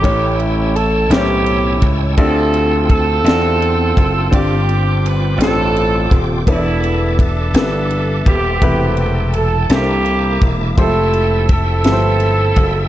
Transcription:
0.00 1.07 A2 medium
0.00 0.68 A3 medium
0.00 0.72 C#4 medium
0.00 0.68 C#4 medium
0.00 0.72 E4 medium
0.00 0.68 E4 medium
0.00 0.38 G4 loud
0.00 0.68 G4 medium
0.00 2.15 C#5 medium
0.00 6.45 G5 medium
0.00 2.15 A5 medium
0.00 4.28 E6 medium
0.04 1.07 A1 loud
0.04 0.69 C#5 medium
0.04 kick medium
0.04 ride medium
0.40 0.73 G4 medium
0.40 ride soft
0.76 1.11 A4 loud
0.76 ride medium
1.10 1.78 B1 loud
1.10 1.75 A3 medium
1.10 1.75 C#4 medium
1.10 2.15 C#4 medium
1.10 1.75 E4 medium
1.10 2.14 E4 medium
1.10 1.91 G4 loud
1.10 1.76 G4 medium
1.10 1.18 C5 medium
1.10 snare loud
1.10 ride medium
1.18 1.79 C#5 medium
1.46 ride soft
1.82 2.15 C#2 medium
1.82 kick medium
1.82 ride medium
2.17 3.21 D2 loud
2.17 3.21 D3 medium
2.17 6.43 C4 medium
2.17 2.82 C4 medium
2.17 2.90 C4 medium
2.17 6.43 F4 medium
2.17 2.91 F4 medium
2.17 2.83 F4 medium
2.17 2.83 G4 medium
2.17 2.85 A4 loud
2.17 2.83 D5 medium
2.17 2.83 E5 medium
2.17 kick medium
2.17 ride medium
2.54 ride soft
2.89 4.29 C4 medium
2.89 4.30 F4 medium
2.89 4.29 A4 loud
2.89 kick medium
2.89 ride medium
3.24 3.92 E2 loud
3.24 3.90 C4 medium
3.24 3.90 F4 medium
3.24 3.90 G4 medium
3.24 3.90 D5 medium
3.24 3.90 E5 medium
3.24 snare medium
3.24 ride medium
3.62 ride soft
3.97 4.30 F#1 medium
3.97 kick medium
3.97 ride medium
4.31 5.36 G1 medium
4.31 5.35 G2 medium
4.31 4.96 C4 medium
4.31 5.36 C4 medium
4.31 4.96 D4 medium
4.31 5.36 D4 medium
4.31 4.97 F4 medium
4.31 4.97 G4 medium
4.31 5.05 G4 loud
4.31 4.97 D5 medium
4.31 8.58 D6 medium
4.31 kick loud
4.31 ride medium
4.69 ride soft
5.06 5.41 B4 loud
5.06 ride medium
5.38 6.06 A1 loud
5.38 6.05 C4 medium
5.38 6.05 D4 medium
5.38 6.05 F4 soft
5.38 6.05 G4 medium
5.38 6.05 C5 medium
5.38 ride medium
5.42 6.34 C4 medium
5.42 6.34 F4 medium
5.42 6.18 A4 loud
5.42 snare loud
5.76 ride soft
6.11 6.44 D#1 medium
6.11 kick medium
6.11 ride medium
6.47 7.50 E1 loud
6.47 7.51 E3 medium
6.47 7.12 B3 medium
6.47 7.12 D4 medium
6.47 7.12 E4 medium
6.47 9.67 A4 medium
6.47 7.12 A4 medium
6.47 6.54 C#5 medium
6.47 8.60 E5 medium
6.47 10.73 A5 medium
6.47 kick medium
6.47 ride medium
6.51 7.53 A3 medium
6.51 7.53 B3 medium
6.51 7.17 E4 medium
6.51 7.16 D5 medium
6.84 ride soft
7.19 8.23 D4 medium
7.19 8.27 A4 loud
7.19 kick medium
7.19 ride medium
7.54 8.22 G1 loud
7.54 8.20 B3 soft
7.54 8.20 D4 soft
7.54 8.20 E4 medium
7.54 8.20 A4 medium
7.54 8.20 B4 medium
7.54 snare medium
7.54 ride medium
7.90 ride soft
8.26 8.59 D#1 medium
8.26 9.30 B3 medium
8.26 9.30 C4 medium
8.26 8.95 G4 medium
8.26 kick loud
8.26 ride medium
8.61 9.65 E1 medium
8.61 9.27 C3 medium
8.61 9.66 E3 medium
8.61 9.27 A3 medium
8.61 9.27 E4 medium
8.61 9.27 G4 medium
8.61 9.27 B4 medium
8.61 9.70 G5 medium
8.61 kick loud
8.61 ride medium
8.97 9.32 G4 medium
8.97 ride soft
9.33 9.71 A4 medium
9.33 ride soft
9.69 10.37 C2 loud
9.69 10.73 C3 medium
9.69 10.34 A#3 medium
9.69 10.77 A#3 medium
9.69 10.74 A#3 medium
9.69 10.35 D4 medium
9.69 10.34 E4 soft
9.69 10.52 G4 loud
9.69 10.35 A4 medium
9.69 10.35 C5 medium
9.69 10.76 E5 medium
9.69 10.76 D6 medium
9.69 snare loud
9.69 ride medium
9.73 10.75 E4 medium
10.06 ride soft
10.41 10.75 E1 medium
10.41 kick medium
10.41 ride medium
10.77 11.85 F1 medium
10.77 11.42 F3 medium
10.77 10.84 G#3 medium
10.77 11.50 C4 medium
10.77 11.42 E4 medium
10.77 11.49 E4 medium
10.77 11.43 G4 medium
10.77 12.88 A4 medium
10.77 11.46 A4 loud
10.77 11.43 C5 medium
10.77 12.88 E5 medium
10.77 12.88 G5 medium
10.77 12.88 E6 medium
10.77 kick loud
10.77 ride medium
10.84 11.45 A3 medium
11.13 ride soft
11.49 12.88 C4 medium
11.49 12.88 E4 medium
11.49 12.88 A4 loud
11.49 kick medium
11.49 ride medium
11.84 12.53 G1 loud
11.84 12.50 F3 medium
11.84 12.50 A3 medium
11.84 12.50 E4 medium
11.84 12.50 G4 medium
11.84 11.92 B4 medium
11.84 snare loud
11.84 ride medium
11.92 12.53 C5 medium
12.20 ride soft
12.56 12.88 F#1 loud
12.56 kick medium
12.56 ride medium

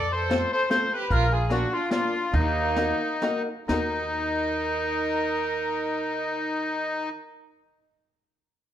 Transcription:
0.00 0.43 F2 loud
0.00 0.11 A4 medium
0.00 0.12 D5 loud
0.12 0.50 A4 medium
0.12 0.51 C5 medium
0.30 0.51 A3 medium
0.30 0.51 C4 medium
0.30 0.52 F4 medium
0.30 0.52 A4 medium
0.30 0.52 C5 medium
0.30 snare medium
0.30 closed hi-hat medium
0.53 0.70 A4 medium
0.53 0.69 C5 loud
0.70 0.91 A3 medium
0.70 0.92 C4 medium
0.70 0.92 F4 medium
0.70 0.92 A4 medium
0.70 0.91 A4 medium
0.70 0.92 C5 loud
0.70 0.92 C5 medium
0.70 snare medium
0.70 closed hi-hat medium
0.93 1.10 G4 loud
0.93 1.12 B4 medium
1.11 1.63 A#1 loud
1.11 1.31 F4 loud
1.11 1.33 A#4 loud
1.11 kick medium
1.11 closed hi-hat medium
1.32 1.50 F4 medium
1.32 1.51 G#4 medium
1.50 1.72 A#3 medium
1.50 1.72 D4 medium
1.50 1.71 D4 medium
1.50 1.72 F4 medium
1.50 1.73 F#4 loud
1.50 1.72 A#4 medium
1.50 1.72 D5 medium
1.50 snare medium
1.50 closed hi-hat medium
1.73 1.90 D4 medium
1.73 1.90 F4 loud
1.91 2.13 A#3 medium
1.91 2.13 D4 medium
1.91 2.30 D4 medium
1.91 2.13 F4 medium
1.91 2.35 F4 loud
1.91 2.14 A#4 medium
1.91 2.14 D5 medium
1.91 snare medium
1.91 closed hi-hat medium
2.33 2.91 D#2 loud
2.33 3.43 A#3 loud
2.33 3.42 D#4 loud
2.33 kick medium
2.33 closed hi-hat soft
2.76 3.00 A#3 medium
2.76 3.01 D#4 medium
2.76 3.01 F#4 medium
2.76 3.01 A#4 medium
2.76 3.01 D#5 medium
2.76 snare medium
2.76 closed hi-hat medium
3.22 3.47 A#3 medium
3.22 3.47 D#4 medium
3.22 3.47 F#4 medium
3.22 3.47 A#4 medium
3.22 3.47 D#5 medium
3.22 snare medium
3.22 closed hi-hat medium
3.68 7.11 D#2 loud
3.68 7.09 A#3 medium
3.68 7.09 D#4 loud
3.68 7.11 D#4 medium
3.68 7.13 F#4 medium
3.68 7.09 A#4 loud
3.68 snare medium
3.68 splash medium
3.73 7.15 A#4 medium

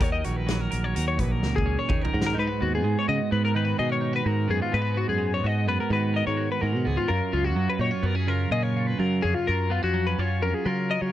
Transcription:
0.00 0.21 D#2 medium
0.00 1.87 D#3 medium
0.00 0.46 F#3 medium
0.00 0.24 F#4 medium
0.00 0.70 A#4 medium
0.00 0.12 C#5 medium
0.00 kick loud
0.00 closed hi-hat medium
0.12 0.25 D#5 medium
0.24 0.67 A#1 medium
0.24 0.94 F#4 soft
0.24 0.37 C#5 medium
0.24 closed hi-hat medium
0.37 0.61 B4 medium
0.47 2.84 F#3 medium
0.47 snare loud
0.47 closed hi-hat medium
0.61 0.84 A#4 medium
0.71 0.93 A#1 medium
0.71 1.88 A#4 medium
0.71 closed hi-hat medium
0.84 0.95 C#5 medium
0.95 1.17 D#2 medium
0.95 2.12 F#4 medium
0.95 1.07 A#4 medium
0.95 closed hi-hat medium
1.08 1.20 C#5 medium
1.17 1.44 A#1 medium
1.17 1.89 A#2 medium
1.17 1.32 B4 medium
1.17 kick medium
1.17 closed hi-hat medium
1.32 1.55 A#4 medium
1.43 1.54 C#2 medium
1.43 snare soft
1.56 1.76 C#2 medium
1.56 1.79 G#4 medium
1.56 kick medium
1.66 2.34 C#4 medium
1.79 2.03 C#5 medium
1.88 2.34 D#3 medium
1.88 2.02 G#4 medium
1.88 kick medium
1.88 mid tom medium
2.02 2.37 A#4 soft
2.02 2.25 A#4 medium
2.02 floor tom medium
2.13 2.35 G#2 medium
2.13 2.34 F#4 medium
2.22 snare medium
2.26 2.38 A#4 medium
2.34 4.24 G#2 medium
2.34 2.47 D#4 medium
2.38 2.48 G#2 loud
2.38 2.62 B4 medium
2.47 3.06 F#4 soft
2.60 2.85 D#2 medium
2.60 3.31 B3 medium
2.60 2.73 F#4 medium
2.75 2.97 G#4 medium
2.84 2.95 G#2 loud
2.84 4.70 G#3 medium
2.99 3.08 C#5 medium
3.08 3.19 C#3 medium
3.08 3.54 F#4 medium
3.08 3.32 D#5 medium
3.31 3.73 G#2 medium
3.31 4.47 B3 medium
3.31 3.44 B4 medium
3.45 3.56 A#4 medium
3.55 4.70 D#3 medium
3.55 3.65 D#4 medium
3.55 3.79 B4 medium
3.65 4.01 F#4 soft
3.79 4.20 B2 medium
3.79 3.89 G#4 medium
3.79 3.91 D#5 medium
3.89 4.73 A#4 soft
3.89 4.15 C#5 medium
4.01 4.13 D#4 medium
4.13 4.25 F#4 soft
4.13 4.27 B4 medium
4.25 4.70 G#2 medium
4.25 4.46 G#2 medium
4.25 4.72 F#4 medium
4.25 4.50 A#4 medium
4.48 4.60 F#2 medium
4.48 4.93 B3 medium
4.48 4.62 G#4 medium
4.62 4.74 F4 medium
4.72 6.60 G#2 medium
4.72 5.04 G#2 medium
4.72 4.82 D#4 medium
4.72 4.97 B4 medium
4.82 5.42 F#4 medium
4.94 5.66 B3 medium
4.94 5.09 F#4 medium
5.09 5.40 F#2 medium
5.09 5.32 G#4 medium
5.18 7.05 G#3 medium
5.34 5.46 C#5 medium
5.44 5.68 G#2 medium
5.44 5.91 F#4 medium
5.44 5.68 D#5 medium
5.68 5.78 F#2 medium
5.68 6.84 B3 medium
5.68 5.80 B4 medium
5.80 5.92 A#4 medium
5.90 6.21 G#2 medium
5.90 7.06 D#3 medium
5.90 6.37 F#4 medium
5.90 6.16 B4 medium
6.14 7.06 A#4 medium
6.14 6.26 D#5 medium
6.27 6.48 G#2 medium
6.27 6.50 C#5 medium
6.37 6.61 F#4 medium
6.52 6.61 B4 medium
6.61 7.06 G#2 medium
6.61 6.76 G#2 medium
6.61 7.08 F#4 medium
6.61 6.87 A#4 medium
6.76 6.85 B2 medium
6.85 6.97 C#2 loud
6.85 7.09 B3 medium
6.85 6.98 G#4 medium
6.97 7.09 F4 medium
7.08 8.98 F#2 medium
7.08 7.20 F#2 loud
7.08 7.79 F4 medium
7.08 7.33 A#4 medium
7.32 7.56 C#2 medium
7.32 8.02 C#4 medium
7.32 7.44 F4 medium
7.44 7.68 F#4 medium
7.56 7.67 F#2 loud
7.56 9.94 F#3 medium
7.70 7.81 B4 medium
7.79 7.90 A#2 medium
7.79 7.91 D#4 medium
7.79 8.06 C#5 medium
7.91 8.26 F4 soft
8.03 8.45 F#2 loud
8.03 8.15 B3 medium
8.03 8.16 A#4 medium
8.15 9.22 C#4 medium
8.15 8.28 G#4 medium
8.27 9.46 C#3 medium
8.27 8.75 F4 medium
8.27 8.52 A#4 medium
8.51 8.93 A#2 medium
8.51 8.63 G#4 medium
8.51 8.63 D#5 medium
8.63 9.46 A#4 soft
8.63 8.87 C#5 medium
8.77 8.98 F4 medium
8.87 8.99 B4 medium
8.99 9.46 F#2 medium
8.99 9.20 F#3 medium
8.99 9.44 F4 medium
8.99 9.23 A#4 medium
9.23 9.34 F2 medium
9.23 9.69 C#4 medium
9.23 9.35 G#4 medium
9.35 9.46 F4 medium
9.47 9.79 F#2 loud
9.47 10.18 F4 medium
9.47 9.71 A#4 medium
9.70 9.83 B3 medium
9.70 9.83 F4 medium
9.83 10.14 F2 medium
9.83 10.41 C#4 medium
9.83 10.07 F#4 medium
9.94 11.12 F#3 medium
10.07 10.19 B4 medium
10.19 10.42 F#2 medium
10.19 10.65 F4 medium
10.19 10.42 C#5 medium
10.42 10.52 F2 medium
10.42 11.12 C#4 medium
10.42 10.54 A#4 medium
10.54 10.66 G#4 medium
10.65 11.12 C#3 medium
10.65 10.97 F#3 medium
10.65 11.12 F4 medium
10.65 10.89 A#4 medium
10.90 11.12 A#4 medium
10.90 11.01 D#5 medium
11.01 11.12 F#3 medium
11.01 11.12 C#5 medium

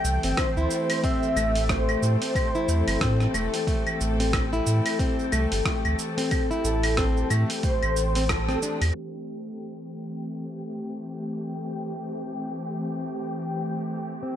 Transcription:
0.00 8.91 E3 medium
0.00 0.22 A3 medium
0.00 8.91 A3 medium
0.00 8.91 C4 medium
0.00 8.93 G4 medium
0.00 8.95 A4 medium
0.00 0.38 G5 loud
0.00 8.93 G5 medium
0.04 0.19 C2 loud
0.04 cabasa medium
0.23 0.34 G1 medium
0.23 0.55 C4 medium
0.23 open hi-hat medium
0.23 cabasa soft
0.37 1.05 C5 loud
0.37 kick loud
0.37 cross-stick medium
0.37 open hi-hat soft
0.37 cabasa soft
0.37 claves medium
0.56 0.67 D2 medium
0.56 1.02 E4 medium
0.56 cabasa soft
0.71 cabasa medium
0.90 open hi-hat medium
0.90 cabasa soft
0.90 claves medium
1.04 1.35 C4 loud
1.04 1.71 E5 loud
1.04 kick loud
1.04 open hi-hat soft
1.04 cabasa soft
1.23 cabasa soft
1.36 1.96 A1 loud
1.36 1.55 A3 medium
1.36 cabasa medium
1.36 claves medium
1.56 open hi-hat medium
1.56 cabasa soft
1.69 2.20 A3 medium
1.69 2.01 C5 loud
1.69 kick loud
1.69 cross-stick loud
1.69 open hi-hat soft
1.69 cabasa soft
1.89 cabasa soft
1.89 claves medium
2.02 2.17 A2 medium
2.02 3.30 C5 medium
2.02 cabasa medium
2.22 2.53 C4 medium
2.22 open hi-hat medium
2.22 cabasa soft
2.35 kick loud
2.35 open hi-hat soft
2.35 cabasa soft
2.35 claves medium
2.55 3.00 E4 medium
2.55 cabasa soft
2.68 2.83 E2 medium
2.68 cabasa medium
2.87 2.98 G1 medium
2.87 open hi-hat medium
2.87 cabasa soft
2.87 claves medium
3.01 3.27 A2 loud
3.01 3.33 C4 loud
3.01 kick loud
3.01 cross-stick loud
3.01 open hi-hat soft
3.01 cabasa soft
3.20 cross-stick soft
3.20 cabasa soft
3.34 3.48 E1 loud
3.34 3.53 A3 medium
3.34 cabasa medium
3.34 claves medium
3.54 open hi-hat medium
3.54 cabasa soft
3.67 4.18 A3 medium
3.67 kick loud
3.67 open hi-hat soft
3.67 cabasa soft
3.87 cabasa soft
3.87 claves medium
4.01 4.61 A1 loud
4.01 cabasa medium
4.20 4.51 C4 medium
4.20 open hi-hat medium
4.20 cabasa soft
4.33 kick loud
4.33 cross-stick loud
4.33 open hi-hat soft
4.33 cabasa soft
4.33 claves medium
4.53 4.98 E4 medium
4.53 cabasa soft
4.66 4.81 A2 medium
4.66 cabasa medium
4.86 open hi-hat medium
4.86 cabasa soft
4.86 claves medium
4.99 5.31 C4 loud
4.99 kick loud
4.99 open hi-hat soft
4.99 cabasa soft
5.19 cabasa soft
5.32 5.47 C2 medium
5.32 5.51 A3 medium
5.32 cabasa medium
5.32 claves medium
5.52 5.62 G1 medium
5.52 open hi-hat medium
5.52 cabasa soft
5.65 6.16 A3 medium
5.65 kick medium
5.65 cross-stick medium
5.65 open hi-hat soft
5.65 cabasa soft
5.85 5.95 D2 medium
5.85 cabasa soft
5.85 claves medium
5.99 cabasa medium
6.18 6.49 C4 medium
6.18 open hi-hat medium
6.18 cabasa soft
6.31 kick loud
6.31 open hi-hat medium
6.31 cabasa soft
6.31 claves medium
6.51 6.96 E4 medium
6.51 cabasa soft
6.64 7.24 A1 loud
6.64 7.26 A4 loud
6.64 cabasa medium
6.83 open hi-hat medium
6.83 cabasa soft
6.83 claves medium
6.97 7.29 C4 loud
6.97 kick loud
6.97 cross-stick loud
6.97 open hi-hat soft
6.97 cabasa soft
7.17 cabasa soft
7.30 7.44 A2 medium
7.30 7.49 A3 medium
7.30 cabasa medium
7.30 claves medium
7.50 open hi-hat medium
7.50 cabasa soft
7.63 7.81 A3 medium
7.63 8.31 C5 loud
7.63 kick loud
7.63 open hi-hat soft
7.63 cabasa soft
7.83 8.57 A1 loud
7.83 cabasa soft
7.83 claves medium
7.96 cabasa medium
8.15 8.24 C4 medium
8.15 open hi-hat medium
8.15 cabasa soft
8.29 8.81 A4 medium
8.29 kick medium
8.29 cross-stick loud
8.29 open hi-hat soft
8.29 cabasa soft
8.29 claves medium
8.49 8.62 C4 loud
8.49 cross-stick soft
8.49 cabasa soft
8.62 8.81 D4 medium
8.62 cabasa medium
8.81 8.91 E2 loud
8.81 open hi-hat medium
8.81 cabasa soft
8.81 claves medium
8.94 14.36 E3 medium
8.94 14.36 A3 medium
8.94 14.36 C4 medium
8.94 14.36 G4 medium
8.94 14.36 G5 medium
14.23 14.36 C4 medium

